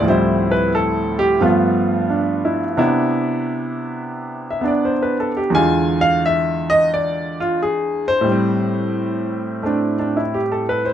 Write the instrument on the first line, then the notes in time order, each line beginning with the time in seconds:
grand piano
0.00 D2 A2 F3
0.05 G3 C4 C5
0.10 E4
0.51 B4
0.75 A4
1.19 G4
1.41 G2 F3 A3 B3 F4
2.10 D4
2.45 E4
2.77 C3 B3 D4 E4
4.50 E5
4.61 B3 D4
4.68 D5
4.85 C5
5.02 B4
5.20 A4
5.37 G4
5.50 E2 D3 G#3
5.55 F4 G#5
6.01 F5
6.26 E5
6.70 D#5
6.94 D5
7.40 F4
7.62 G#4
8.08 C5
8.21 A2 G3
8.32 C4
9.63 A3 C4 D4
9.99 D4
10.17 E4
10.34 G4
10.52 A4
10.69 B4
10.85 C5